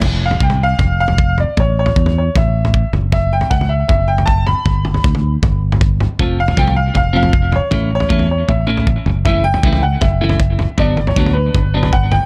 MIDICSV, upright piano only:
0, 0, Header, 1, 2, 480
1, 0, Start_track
1, 0, Tempo, 383877
1, 43, Time_signature, 4, 2, 24, 8
1, 15326, End_track
2, 0, Start_track
2, 0, Title_t, "Upright piano"
2, 0, Program_c, 0, 0
2, 319, Note_on_c, 0, 77, 84
2, 527, Note_off_c, 0, 77, 0
2, 535, Note_on_c, 0, 79, 84
2, 755, Note_off_c, 0, 79, 0
2, 792, Note_on_c, 0, 77, 102
2, 1229, Note_off_c, 0, 77, 0
2, 1255, Note_on_c, 0, 77, 102
2, 1701, Note_off_c, 0, 77, 0
2, 1748, Note_on_c, 0, 74, 76
2, 1988, Note_off_c, 0, 74, 0
2, 1999, Note_on_c, 0, 73, 85
2, 2222, Note_off_c, 0, 73, 0
2, 2240, Note_on_c, 0, 73, 89
2, 2711, Note_off_c, 0, 73, 0
2, 2730, Note_on_c, 0, 73, 80
2, 2938, Note_off_c, 0, 73, 0
2, 2963, Note_on_c, 0, 76, 71
2, 3622, Note_off_c, 0, 76, 0
2, 3908, Note_on_c, 0, 76, 88
2, 4151, Note_off_c, 0, 76, 0
2, 4161, Note_on_c, 0, 79, 96
2, 4382, Note_on_c, 0, 78, 90
2, 4398, Note_off_c, 0, 79, 0
2, 4614, Note_on_c, 0, 76, 84
2, 4629, Note_off_c, 0, 78, 0
2, 4837, Note_off_c, 0, 76, 0
2, 4856, Note_on_c, 0, 76, 81
2, 5099, Note_on_c, 0, 79, 93
2, 5106, Note_off_c, 0, 76, 0
2, 5322, Note_on_c, 0, 81, 100
2, 5348, Note_off_c, 0, 79, 0
2, 5580, Note_off_c, 0, 81, 0
2, 5583, Note_on_c, 0, 83, 96
2, 6253, Note_off_c, 0, 83, 0
2, 8002, Note_on_c, 0, 77, 92
2, 8234, Note_on_c, 0, 79, 101
2, 8238, Note_off_c, 0, 77, 0
2, 8451, Note_off_c, 0, 79, 0
2, 8458, Note_on_c, 0, 77, 86
2, 8695, Note_off_c, 0, 77, 0
2, 8714, Note_on_c, 0, 77, 92
2, 8930, Note_off_c, 0, 77, 0
2, 8960, Note_on_c, 0, 77, 94
2, 9443, Note_off_c, 0, 77, 0
2, 9449, Note_on_c, 0, 73, 89
2, 9923, Note_off_c, 0, 73, 0
2, 9942, Note_on_c, 0, 73, 104
2, 10367, Note_off_c, 0, 73, 0
2, 10395, Note_on_c, 0, 73, 82
2, 10612, Note_on_c, 0, 76, 74
2, 10632, Note_off_c, 0, 73, 0
2, 11282, Note_off_c, 0, 76, 0
2, 11564, Note_on_c, 0, 76, 91
2, 11791, Note_off_c, 0, 76, 0
2, 11803, Note_on_c, 0, 79, 113
2, 12252, Note_off_c, 0, 79, 0
2, 12288, Note_on_c, 0, 78, 88
2, 12522, Note_on_c, 0, 76, 74
2, 12536, Note_off_c, 0, 78, 0
2, 13495, Note_on_c, 0, 74, 89
2, 13512, Note_off_c, 0, 76, 0
2, 13825, Note_off_c, 0, 74, 0
2, 13855, Note_on_c, 0, 73, 77
2, 14171, Note_on_c, 0, 71, 87
2, 14220, Note_off_c, 0, 73, 0
2, 14915, Note_on_c, 0, 78, 98
2, 15094, Note_off_c, 0, 71, 0
2, 15146, Note_on_c, 0, 79, 110
2, 15164, Note_off_c, 0, 78, 0
2, 15326, Note_off_c, 0, 79, 0
2, 15326, End_track
0, 0, End_of_file